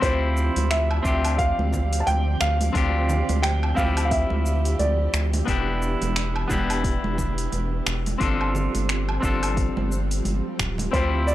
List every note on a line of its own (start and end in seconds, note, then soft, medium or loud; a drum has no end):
0.00 0.50 D2 loud
0.00 5.44 D3 medium
0.00 5.44 F3 medium
0.00 1.00 C4 medium
0.00 5.44 C4 medium
0.00 1.01 E4 medium
0.00 1.02 F4 medium
0.00 8.17 G4 medium
0.00 0.67 C5 medium
0.00 5.44 D5 medium
0.00 kick loud
0.00 open hi-hat soft
0.00 shaker soft
0.05 1.02 G4 loud
0.37 shaker medium
0.56 1.00 D2 medium
0.56 open hi-hat medium
0.56 high conga medium
0.56 shaker soft
0.71 1.41 E5 medium
0.71 finger snap medium
0.71 open hi-hat soft
0.71 shaker soft
0.91 low woodblock medium
1.03 1.52 D2 loud
1.03 2.71 C4 medium
1.03 2.71 D4 medium
1.03 2.72 F4 medium
1.03 kick loud
1.03 shaker medium
1.07 2.73 G4 loud
1.25 open hi-hat medium
1.25 low woodblock medium
1.25 shaker soft
1.38 2.03 F5 loud
1.38 kick loud
1.38 open hi-hat soft
1.38 shaker soft
1.59 2.03 D2 medium
1.59 high conga medium
1.73 kick medium
1.73 low conga medium
1.73 shaker medium
1.93 open hi-hat medium
1.93 shaker soft
2.00 2.07 A5 medium
2.07 2.36 D2 medium
2.07 2.39 G5 loud
2.07 open hi-hat soft
2.07 high conga medium
2.07 shaker soft
2.41 2.70 D2 medium
2.41 3.39 F5 loud
2.41 finger snap medium
2.41 shaker medium
2.61 open hi-hat medium
2.61 high conga medium
2.61 shaker soft
2.73 3.23 D2 loud
2.73 3.73 C4 medium
2.73 3.74 D4 medium
2.73 3.74 F4 medium
2.73 kick loud
2.73 open hi-hat soft
2.73 shaker soft
2.77 3.75 G4 loud
3.09 low conga loud
3.09 shaker medium
3.29 3.73 D2 medium
3.29 open hi-hat medium
3.29 high conga loud
3.29 shaker soft
3.42 3.78 G5 loud
3.42 finger snap medium
3.42 open hi-hat soft
3.42 shaker soft
3.63 low woodblock medium
3.75 4.25 D2 loud
3.75 5.43 C4 medium
3.75 5.44 E4 medium
3.75 5.45 F4 medium
3.75 3.83 F5 medium
3.75 kick loud
3.75 high conga medium
3.75 shaker medium
3.79 5.45 G4 loud
3.97 open hi-hat medium
3.97 low woodblock medium
3.97 shaker medium
4.05 4.11 F5 medium
4.11 4.82 E5 medium
4.11 kick loud
4.11 open hi-hat soft
4.11 shaker soft
4.30 4.75 D2 medium
4.30 high conga medium
4.46 shaker medium
4.65 open hi-hat medium
4.65 shaker soft
4.79 5.08 D2 medium
4.79 5.30 D5 medium
4.79 open hi-hat soft
4.79 high conga medium
4.79 shaker soft
5.13 5.42 D2 loud
5.13 finger snap medium
5.13 shaker medium
5.33 open hi-hat medium
5.33 high conga medium
5.33 low conga medium
5.33 shaker soft
5.45 5.96 E1 loud
5.45 8.18 E3 medium
5.45 6.46 B3 medium
5.45 8.18 B3 medium
5.45 6.46 D4 medium
5.45 8.18 D4 medium
5.45 6.47 E4 medium
5.45 kick loud
5.45 open hi-hat soft
5.45 shaker soft
5.50 6.48 G4 loud
5.82 shaker medium
6.01 6.46 E1 medium
6.01 open hi-hat medium
6.01 high conga medium
6.01 shaker soft
6.16 finger snap medium
6.16 open hi-hat soft
6.16 shaker soft
6.36 low woodblock medium
6.48 6.98 E1 loud
6.48 8.16 B3 medium
6.48 8.17 D4 medium
6.48 8.17 E4 medium
6.48 kick loud
6.48 high conga medium
6.48 shaker medium
6.52 8.18 G4 loud
6.70 open hi-hat medium
6.70 low woodblock medium
6.70 shaker soft
6.84 kick loud
6.84 open hi-hat soft
6.84 shaker soft
7.04 7.48 E1 medium
7.04 high conga medium
7.18 kick medium
7.18 low conga medium
7.18 shaker medium
7.38 open hi-hat medium
7.38 shaker soft
7.52 7.81 E1 medium
7.52 open hi-hat soft
7.52 high conga medium
7.52 shaker soft
7.86 8.15 E1 medium
7.86 finger snap medium
7.86 shaker medium
8.06 open hi-hat medium
8.06 high conga medium
8.06 shaker soft
8.18 8.68 G1 loud
8.18 11.35 F3 medium
8.18 10.90 G3 medium
8.18 9.18 C4 medium
8.18 10.90 C4 medium
8.18 9.19 D4 medium
8.18 9.20 F4 medium
8.18 kick loud
8.18 open hi-hat soft
8.18 shaker soft
8.23 9.21 A4 loud
8.41 low woodblock medium
8.55 low conga medium
8.55 shaker medium
8.75 9.19 G1 medium
8.75 open hi-hat medium
8.75 high conga medium
8.75 shaker soft
8.89 finger snap medium
8.89 open hi-hat soft
8.89 shaker soft
9.09 low woodblock medium
9.20 9.71 G1 loud
9.20 10.89 C4 medium
9.20 10.89 D4 medium
9.20 10.90 F4 medium
9.20 kick loud
9.20 shaker medium
9.25 10.91 A4 loud
9.43 open hi-hat medium
9.43 low woodblock medium
9.43 shaker medium
9.57 kick loud
9.57 open hi-hat soft
9.57 shaker soft
9.77 10.21 G1 medium
9.77 high conga loud
9.92 shaker medium
10.11 open hi-hat medium
10.11 shaker soft
10.25 10.41 G1 medium
10.25 open hi-hat soft
10.25 high conga medium
10.25 shaker soft
10.59 10.88 D1 medium
10.59 finger snap medium
10.59 kick medium
10.59 shaker medium
10.78 open hi-hat medium
10.78 high conga medium
10.78 low conga medium
10.78 shaker soft
10.92 11.35 D2 loud
10.92 11.35 D3 medium
10.92 11.35 C4 medium
10.92 11.35 E4 medium
10.92 11.35 F4 medium
10.92 11.35 G4 loud
10.92 11.28 C5 medium
10.92 11.35 D5 medium
10.92 kick loud
10.92 open hi-hat soft
10.92 shaker soft
10.96 11.35 G4 loud
11.27 11.35 D5 medium
11.27 shaker medium